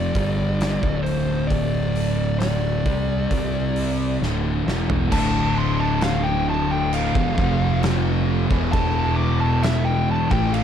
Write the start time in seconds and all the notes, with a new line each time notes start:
Already playing: F1 F2 C3 F3 D5
0.15 G1 G2 D3 G3, kick, open hi-hat
0.61 snare, open hi-hat
0.82 D1 D2 A2 D3, kick
1.03 C5, open hi-hat
1.47 D5, kick, open hi-hat
1.96 open hi-hat
2.40 D5, snare, open hi-hat
2.86 C2 C3 G3 C4, kick, open hi-hat
3.31 C2 C3 G3 C4, kick, open hi-hat
3.76 open hi-hat
4.21 D1 D2 A2 D3, snare
4.66 E1 E2 B2 E3, snare
4.90 floor tom
5.11 D1 D2 A2 D3 A5, kick, crash
5.58 C6
5.80 A5
6.01 F5, snare, crash
6.23 G5
6.50 A5
6.72 G5
6.93 F5, crash
7.15 E1 E2 B2, kick
7.38 F1 F2 C3 F3, kick
7.83 snare, crash
8.51 E1 E2 B2 E3, kick
8.72 A5, kick, crash
9.16 D6
9.40 A5
9.63 E5, snare, crash
9.84 G5
10.11 A5
10.31 A1 A2 E3 A3 G5, kick
10.53 F5, crash